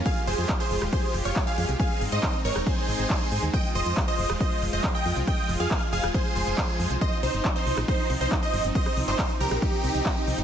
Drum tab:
HH |xxoxxxo-xxoxxxox|xxoxxxo-xxoxxxox|xxoxxxoxxxoxxxox|xxoxxxoxxxoxxxox|
CP |----x-------x---|----x-------x---|----x-------x---|----x-------x---|
SD |-------r--------|-------r--------|-------r--------|-------r--------|
BD |o---o---o---o---|o---o---o---o---|o---o---o---o---|o---o---o---o---|

HH |xxoxxxoxxxoxxxox|xxoxxxoxxxoxxxox|
CP |----x-------x---|---xx-------x---|
SD |-------r--------|-r-----r--------|
BD |o---o---o---o---|o---o---o---o---|